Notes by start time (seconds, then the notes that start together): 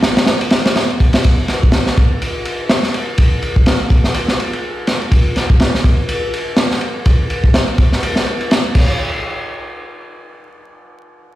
0.03 snare, ride
0.17 snare, ride
0.26 snare, ride
0.41 ride
0.50 snare, ride
0.65 snare, ride
0.76 snare, ride
0.90 ride
1.00 kick, ride
1.13 snare, ride
1.24 kick, ride
1.48 snare, ride
1.63 kick
1.72 snare, ride
1.86 snare
1.97 kick, ride
2.22 ride
2.45 ride
2.69 snare, ride
2.83 snare
2.94 ride
3.18 kick, ride
3.42 ride
3.56 kick
3.66 snare, ride
3.80 ride
3.90 kick, ride
4.04 snare
4.14 ride
4.28 snare
4.40 ride
4.53 ride
4.87 snare, ride
5.02 ride
5.12 kick, ride
5.36 snare, ride
5.50 kick
5.60 snare, ride
5.75 snare
5.84 kick, ride
6.09 ride
6.34 ride
6.57 snare, ride
6.71 snare
6.81 ride
7.06 kick, ride
7.30 ride
7.44 kick
7.54 snare, ride
7.68 ride
7.78 kick, ride
7.92 snare
8.03 ride
8.16 snare
8.26 ride
8.41 ride
8.51 snare, ride
8.64 ride
8.75 kick, crash